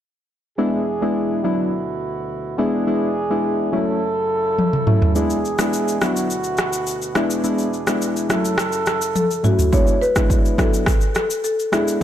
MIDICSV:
0, 0, Header, 1, 5, 480
1, 0, Start_track
1, 0, Tempo, 571429
1, 490, Time_signature, 4, 2, 24, 8
1, 10106, End_track
2, 0, Start_track
2, 0, Title_t, "Marimba"
2, 0, Program_c, 0, 12
2, 7693, Note_on_c, 0, 69, 95
2, 7934, Note_on_c, 0, 66, 88
2, 7938, Note_off_c, 0, 69, 0
2, 8041, Note_off_c, 0, 66, 0
2, 8173, Note_on_c, 0, 73, 99
2, 8413, Note_on_c, 0, 71, 105
2, 8419, Note_off_c, 0, 73, 0
2, 8858, Note_off_c, 0, 71, 0
2, 8891, Note_on_c, 0, 69, 96
2, 9356, Note_off_c, 0, 69, 0
2, 9366, Note_on_c, 0, 69, 89
2, 9602, Note_off_c, 0, 69, 0
2, 9612, Note_on_c, 0, 69, 95
2, 9834, Note_off_c, 0, 69, 0
2, 9853, Note_on_c, 0, 68, 88
2, 10085, Note_off_c, 0, 68, 0
2, 10106, End_track
3, 0, Start_track
3, 0, Title_t, "Brass ensemble"
3, 0, Program_c, 1, 61
3, 492, Note_on_c, 1, 47, 70
3, 492, Note_on_c, 1, 62, 64
3, 492, Note_on_c, 1, 68, 79
3, 493, Note_on_c, 1, 40, 68
3, 1204, Note_off_c, 1, 40, 0
3, 1204, Note_off_c, 1, 62, 0
3, 1204, Note_off_c, 1, 68, 0
3, 1212, Note_on_c, 1, 66, 85
3, 1213, Note_on_c, 1, 38, 76
3, 1213, Note_on_c, 1, 64, 70
3, 2154, Note_off_c, 1, 47, 0
3, 2161, Note_off_c, 1, 66, 0
3, 2162, Note_off_c, 1, 38, 0
3, 2162, Note_off_c, 1, 64, 0
3, 2171, Note_on_c, 1, 68, 80
3, 2172, Note_on_c, 1, 40, 72
3, 2172, Note_on_c, 1, 62, 66
3, 2173, Note_on_c, 1, 47, 63
3, 3121, Note_off_c, 1, 62, 0
3, 3121, Note_off_c, 1, 68, 0
3, 3122, Note_off_c, 1, 40, 0
3, 3122, Note_off_c, 1, 47, 0
3, 3132, Note_on_c, 1, 64, 70
3, 3133, Note_on_c, 1, 42, 80
3, 3133, Note_on_c, 1, 69, 84
3, 3134, Note_on_c, 1, 49, 70
3, 4319, Note_off_c, 1, 64, 0
3, 4320, Note_off_c, 1, 42, 0
3, 4320, Note_off_c, 1, 49, 0
3, 4320, Note_off_c, 1, 69, 0
3, 4330, Note_on_c, 1, 40, 70
3, 4330, Note_on_c, 1, 47, 67
3, 4330, Note_on_c, 1, 62, 66
3, 4330, Note_on_c, 1, 68, 78
3, 5040, Note_off_c, 1, 47, 0
3, 5043, Note_off_c, 1, 40, 0
3, 5043, Note_off_c, 1, 62, 0
3, 5043, Note_off_c, 1, 68, 0
3, 5049, Note_on_c, 1, 64, 71
3, 5050, Note_on_c, 1, 47, 73
3, 5050, Note_on_c, 1, 66, 85
3, 5051, Note_on_c, 1, 38, 80
3, 6000, Note_off_c, 1, 64, 0
3, 6001, Note_off_c, 1, 38, 0
3, 6001, Note_off_c, 1, 66, 0
3, 6008, Note_on_c, 1, 62, 65
3, 6009, Note_on_c, 1, 40, 68
3, 6009, Note_on_c, 1, 68, 80
3, 6951, Note_off_c, 1, 47, 0
3, 6959, Note_off_c, 1, 62, 0
3, 6960, Note_off_c, 1, 40, 0
3, 6960, Note_off_c, 1, 68, 0
3, 6969, Note_on_c, 1, 42, 79
3, 6969, Note_on_c, 1, 49, 75
3, 6970, Note_on_c, 1, 64, 69
3, 6970, Note_on_c, 1, 69, 85
3, 8157, Note_off_c, 1, 42, 0
3, 8158, Note_off_c, 1, 49, 0
3, 8158, Note_off_c, 1, 64, 0
3, 8158, Note_off_c, 1, 69, 0
3, 10106, End_track
4, 0, Start_track
4, 0, Title_t, "Synth keys"
4, 0, Program_c, 2, 88
4, 488, Note_on_c, 2, 56, 85
4, 490, Note_on_c, 2, 59, 81
4, 491, Note_on_c, 2, 62, 76
4, 493, Note_on_c, 2, 64, 94
4, 671, Note_off_c, 2, 56, 0
4, 672, Note_off_c, 2, 59, 0
4, 673, Note_off_c, 2, 62, 0
4, 674, Note_off_c, 2, 64, 0
4, 855, Note_on_c, 2, 56, 70
4, 857, Note_on_c, 2, 59, 67
4, 858, Note_on_c, 2, 62, 66
4, 860, Note_on_c, 2, 64, 82
4, 1183, Note_off_c, 2, 56, 0
4, 1183, Note_off_c, 2, 59, 0
4, 1184, Note_off_c, 2, 62, 0
4, 1185, Note_off_c, 2, 64, 0
4, 1210, Note_on_c, 2, 54, 73
4, 1212, Note_on_c, 2, 59, 65
4, 1213, Note_on_c, 2, 62, 66
4, 1215, Note_on_c, 2, 64, 83
4, 1432, Note_off_c, 2, 54, 0
4, 1432, Note_off_c, 2, 59, 0
4, 1433, Note_off_c, 2, 62, 0
4, 1434, Note_off_c, 2, 64, 0
4, 2168, Note_on_c, 2, 56, 87
4, 2170, Note_on_c, 2, 59, 84
4, 2172, Note_on_c, 2, 62, 83
4, 2173, Note_on_c, 2, 64, 97
4, 2391, Note_off_c, 2, 56, 0
4, 2392, Note_off_c, 2, 59, 0
4, 2392, Note_off_c, 2, 62, 0
4, 2393, Note_off_c, 2, 64, 0
4, 2411, Note_on_c, 2, 56, 90
4, 2411, Note_on_c, 2, 59, 78
4, 2413, Note_on_c, 2, 62, 82
4, 2414, Note_on_c, 2, 64, 94
4, 2593, Note_off_c, 2, 56, 0
4, 2593, Note_off_c, 2, 59, 0
4, 2594, Note_off_c, 2, 62, 0
4, 2595, Note_off_c, 2, 64, 0
4, 2775, Note_on_c, 2, 56, 77
4, 2776, Note_on_c, 2, 59, 69
4, 2778, Note_on_c, 2, 62, 71
4, 2779, Note_on_c, 2, 64, 81
4, 3102, Note_off_c, 2, 56, 0
4, 3103, Note_off_c, 2, 59, 0
4, 3104, Note_off_c, 2, 62, 0
4, 3105, Note_off_c, 2, 64, 0
4, 3129, Note_on_c, 2, 54, 71
4, 3129, Note_on_c, 2, 57, 69
4, 3132, Note_on_c, 2, 61, 68
4, 3133, Note_on_c, 2, 64, 83
4, 3351, Note_off_c, 2, 54, 0
4, 3351, Note_off_c, 2, 57, 0
4, 3353, Note_off_c, 2, 61, 0
4, 3353, Note_off_c, 2, 64, 0
4, 4089, Note_on_c, 2, 54, 71
4, 4091, Note_on_c, 2, 57, 67
4, 4092, Note_on_c, 2, 61, 70
4, 4093, Note_on_c, 2, 64, 80
4, 4311, Note_off_c, 2, 54, 0
4, 4312, Note_off_c, 2, 57, 0
4, 4313, Note_off_c, 2, 61, 0
4, 4313, Note_off_c, 2, 64, 0
4, 4330, Note_on_c, 2, 56, 87
4, 4331, Note_on_c, 2, 59, 82
4, 4333, Note_on_c, 2, 62, 82
4, 4334, Note_on_c, 2, 64, 97
4, 4512, Note_off_c, 2, 56, 0
4, 4513, Note_off_c, 2, 59, 0
4, 4514, Note_off_c, 2, 62, 0
4, 4514, Note_off_c, 2, 64, 0
4, 4694, Note_on_c, 2, 56, 73
4, 4695, Note_on_c, 2, 59, 66
4, 4698, Note_on_c, 2, 62, 71
4, 4698, Note_on_c, 2, 64, 85
4, 5022, Note_off_c, 2, 56, 0
4, 5022, Note_off_c, 2, 59, 0
4, 5024, Note_off_c, 2, 62, 0
4, 5024, Note_off_c, 2, 64, 0
4, 5048, Note_on_c, 2, 54, 77
4, 5050, Note_on_c, 2, 59, 71
4, 5052, Note_on_c, 2, 62, 68
4, 5054, Note_on_c, 2, 64, 82
4, 5271, Note_off_c, 2, 54, 0
4, 5272, Note_off_c, 2, 59, 0
4, 5273, Note_off_c, 2, 62, 0
4, 5274, Note_off_c, 2, 64, 0
4, 6008, Note_on_c, 2, 56, 85
4, 6010, Note_on_c, 2, 59, 81
4, 6012, Note_on_c, 2, 62, 80
4, 6013, Note_on_c, 2, 64, 99
4, 6230, Note_off_c, 2, 56, 0
4, 6231, Note_off_c, 2, 59, 0
4, 6233, Note_off_c, 2, 62, 0
4, 6233, Note_off_c, 2, 64, 0
4, 6247, Note_on_c, 2, 56, 87
4, 6249, Note_on_c, 2, 59, 76
4, 6250, Note_on_c, 2, 62, 78
4, 6252, Note_on_c, 2, 64, 100
4, 6431, Note_off_c, 2, 56, 0
4, 6432, Note_off_c, 2, 59, 0
4, 6432, Note_off_c, 2, 62, 0
4, 6433, Note_off_c, 2, 64, 0
4, 6612, Note_on_c, 2, 56, 75
4, 6613, Note_on_c, 2, 59, 70
4, 6615, Note_on_c, 2, 62, 68
4, 6616, Note_on_c, 2, 64, 83
4, 6941, Note_off_c, 2, 56, 0
4, 6941, Note_off_c, 2, 59, 0
4, 6943, Note_off_c, 2, 62, 0
4, 6943, Note_off_c, 2, 64, 0
4, 6965, Note_on_c, 2, 54, 72
4, 6966, Note_on_c, 2, 57, 66
4, 6968, Note_on_c, 2, 61, 65
4, 6970, Note_on_c, 2, 64, 78
4, 7189, Note_off_c, 2, 54, 0
4, 7190, Note_off_c, 2, 57, 0
4, 7191, Note_off_c, 2, 61, 0
4, 7192, Note_off_c, 2, 64, 0
4, 7924, Note_on_c, 2, 54, 71
4, 7926, Note_on_c, 2, 57, 69
4, 7929, Note_on_c, 2, 61, 67
4, 7930, Note_on_c, 2, 64, 78
4, 8110, Note_off_c, 2, 54, 0
4, 8110, Note_off_c, 2, 57, 0
4, 8112, Note_off_c, 2, 61, 0
4, 8112, Note_off_c, 2, 64, 0
4, 8168, Note_on_c, 2, 56, 86
4, 8169, Note_on_c, 2, 59, 83
4, 8171, Note_on_c, 2, 62, 79
4, 8173, Note_on_c, 2, 64, 95
4, 8351, Note_off_c, 2, 56, 0
4, 8352, Note_off_c, 2, 59, 0
4, 8353, Note_off_c, 2, 62, 0
4, 8354, Note_off_c, 2, 64, 0
4, 8532, Note_on_c, 2, 56, 71
4, 8534, Note_on_c, 2, 59, 69
4, 8536, Note_on_c, 2, 62, 69
4, 8537, Note_on_c, 2, 64, 86
4, 8861, Note_off_c, 2, 56, 0
4, 8862, Note_off_c, 2, 59, 0
4, 8863, Note_off_c, 2, 62, 0
4, 8864, Note_off_c, 2, 64, 0
4, 8887, Note_on_c, 2, 54, 75
4, 8889, Note_on_c, 2, 59, 68
4, 8890, Note_on_c, 2, 62, 68
4, 8892, Note_on_c, 2, 64, 81
4, 9110, Note_off_c, 2, 54, 0
4, 9111, Note_off_c, 2, 59, 0
4, 9112, Note_off_c, 2, 62, 0
4, 9113, Note_off_c, 2, 64, 0
4, 9845, Note_on_c, 2, 56, 88
4, 9847, Note_on_c, 2, 59, 78
4, 9849, Note_on_c, 2, 62, 84
4, 9851, Note_on_c, 2, 64, 95
4, 10069, Note_off_c, 2, 56, 0
4, 10070, Note_off_c, 2, 59, 0
4, 10071, Note_off_c, 2, 62, 0
4, 10072, Note_off_c, 2, 64, 0
4, 10106, End_track
5, 0, Start_track
5, 0, Title_t, "Drums"
5, 3852, Note_on_c, 9, 48, 58
5, 3936, Note_off_c, 9, 48, 0
5, 3976, Note_on_c, 9, 47, 67
5, 4060, Note_off_c, 9, 47, 0
5, 4091, Note_on_c, 9, 45, 90
5, 4175, Note_off_c, 9, 45, 0
5, 4216, Note_on_c, 9, 43, 89
5, 4300, Note_off_c, 9, 43, 0
5, 4332, Note_on_c, 9, 82, 74
5, 4416, Note_off_c, 9, 82, 0
5, 4452, Note_on_c, 9, 82, 47
5, 4536, Note_off_c, 9, 82, 0
5, 4579, Note_on_c, 9, 82, 41
5, 4663, Note_off_c, 9, 82, 0
5, 4693, Note_on_c, 9, 37, 93
5, 4693, Note_on_c, 9, 82, 91
5, 4777, Note_off_c, 9, 37, 0
5, 4777, Note_off_c, 9, 82, 0
5, 4816, Note_on_c, 9, 82, 77
5, 4900, Note_off_c, 9, 82, 0
5, 4941, Note_on_c, 9, 82, 54
5, 5025, Note_off_c, 9, 82, 0
5, 5052, Note_on_c, 9, 82, 55
5, 5053, Note_on_c, 9, 37, 84
5, 5136, Note_off_c, 9, 82, 0
5, 5137, Note_off_c, 9, 37, 0
5, 5179, Note_on_c, 9, 82, 86
5, 5263, Note_off_c, 9, 82, 0
5, 5296, Note_on_c, 9, 82, 84
5, 5380, Note_off_c, 9, 82, 0
5, 5407, Note_on_c, 9, 82, 53
5, 5491, Note_off_c, 9, 82, 0
5, 5522, Note_on_c, 9, 82, 51
5, 5531, Note_on_c, 9, 37, 92
5, 5606, Note_off_c, 9, 82, 0
5, 5615, Note_off_c, 9, 37, 0
5, 5653, Note_on_c, 9, 82, 106
5, 5737, Note_off_c, 9, 82, 0
5, 5769, Note_on_c, 9, 82, 78
5, 5853, Note_off_c, 9, 82, 0
5, 5897, Note_on_c, 9, 82, 57
5, 5981, Note_off_c, 9, 82, 0
5, 6008, Note_on_c, 9, 37, 90
5, 6010, Note_on_c, 9, 82, 49
5, 6092, Note_off_c, 9, 37, 0
5, 6094, Note_off_c, 9, 82, 0
5, 6136, Note_on_c, 9, 82, 93
5, 6220, Note_off_c, 9, 82, 0
5, 6251, Note_on_c, 9, 82, 73
5, 6335, Note_off_c, 9, 82, 0
5, 6371, Note_on_c, 9, 82, 46
5, 6455, Note_off_c, 9, 82, 0
5, 6498, Note_on_c, 9, 82, 41
5, 6582, Note_off_c, 9, 82, 0
5, 6612, Note_on_c, 9, 37, 90
5, 6613, Note_on_c, 9, 82, 87
5, 6696, Note_off_c, 9, 37, 0
5, 6697, Note_off_c, 9, 82, 0
5, 6734, Note_on_c, 9, 82, 78
5, 6818, Note_off_c, 9, 82, 0
5, 6859, Note_on_c, 9, 82, 56
5, 6943, Note_off_c, 9, 82, 0
5, 6971, Note_on_c, 9, 82, 57
5, 6973, Note_on_c, 9, 37, 81
5, 7055, Note_off_c, 9, 82, 0
5, 7057, Note_off_c, 9, 37, 0
5, 7098, Note_on_c, 9, 82, 90
5, 7182, Note_off_c, 9, 82, 0
5, 7205, Note_on_c, 9, 37, 96
5, 7217, Note_on_c, 9, 82, 81
5, 7289, Note_off_c, 9, 37, 0
5, 7301, Note_off_c, 9, 82, 0
5, 7327, Note_on_c, 9, 82, 52
5, 7411, Note_off_c, 9, 82, 0
5, 7444, Note_on_c, 9, 82, 48
5, 7453, Note_on_c, 9, 37, 90
5, 7528, Note_off_c, 9, 82, 0
5, 7537, Note_off_c, 9, 37, 0
5, 7574, Note_on_c, 9, 82, 99
5, 7658, Note_off_c, 9, 82, 0
5, 7691, Note_on_c, 9, 48, 52
5, 7692, Note_on_c, 9, 82, 77
5, 7775, Note_off_c, 9, 48, 0
5, 7776, Note_off_c, 9, 82, 0
5, 7819, Note_on_c, 9, 82, 58
5, 7903, Note_off_c, 9, 82, 0
5, 7931, Note_on_c, 9, 45, 83
5, 7933, Note_on_c, 9, 82, 50
5, 8015, Note_off_c, 9, 45, 0
5, 8017, Note_off_c, 9, 82, 0
5, 8056, Note_on_c, 9, 43, 79
5, 8057, Note_on_c, 9, 82, 96
5, 8140, Note_off_c, 9, 43, 0
5, 8141, Note_off_c, 9, 82, 0
5, 8171, Note_on_c, 9, 36, 112
5, 8172, Note_on_c, 9, 82, 73
5, 8255, Note_off_c, 9, 36, 0
5, 8256, Note_off_c, 9, 82, 0
5, 8292, Note_on_c, 9, 82, 47
5, 8376, Note_off_c, 9, 82, 0
5, 8420, Note_on_c, 9, 82, 39
5, 8504, Note_off_c, 9, 82, 0
5, 8533, Note_on_c, 9, 37, 93
5, 8534, Note_on_c, 9, 82, 90
5, 8536, Note_on_c, 9, 36, 88
5, 8617, Note_off_c, 9, 37, 0
5, 8618, Note_off_c, 9, 82, 0
5, 8620, Note_off_c, 9, 36, 0
5, 8651, Note_on_c, 9, 36, 91
5, 8657, Note_on_c, 9, 82, 76
5, 8735, Note_off_c, 9, 36, 0
5, 8741, Note_off_c, 9, 82, 0
5, 8782, Note_on_c, 9, 82, 55
5, 8866, Note_off_c, 9, 82, 0
5, 8890, Note_on_c, 9, 36, 86
5, 8893, Note_on_c, 9, 82, 52
5, 8895, Note_on_c, 9, 37, 84
5, 8974, Note_off_c, 9, 36, 0
5, 8977, Note_off_c, 9, 82, 0
5, 8979, Note_off_c, 9, 37, 0
5, 9020, Note_on_c, 9, 82, 86
5, 9104, Note_off_c, 9, 82, 0
5, 9125, Note_on_c, 9, 37, 99
5, 9130, Note_on_c, 9, 36, 96
5, 9137, Note_on_c, 9, 82, 84
5, 9209, Note_off_c, 9, 37, 0
5, 9214, Note_off_c, 9, 36, 0
5, 9221, Note_off_c, 9, 82, 0
5, 9248, Note_on_c, 9, 82, 52
5, 9332, Note_off_c, 9, 82, 0
5, 9365, Note_on_c, 9, 82, 50
5, 9374, Note_on_c, 9, 37, 89
5, 9449, Note_off_c, 9, 82, 0
5, 9458, Note_off_c, 9, 37, 0
5, 9496, Note_on_c, 9, 82, 103
5, 9580, Note_off_c, 9, 82, 0
5, 9612, Note_on_c, 9, 82, 80
5, 9696, Note_off_c, 9, 82, 0
5, 9740, Note_on_c, 9, 82, 59
5, 9824, Note_off_c, 9, 82, 0
5, 9851, Note_on_c, 9, 37, 91
5, 9852, Note_on_c, 9, 82, 52
5, 9935, Note_off_c, 9, 37, 0
5, 9936, Note_off_c, 9, 82, 0
5, 9978, Note_on_c, 9, 82, 90
5, 10062, Note_off_c, 9, 82, 0
5, 10106, End_track
0, 0, End_of_file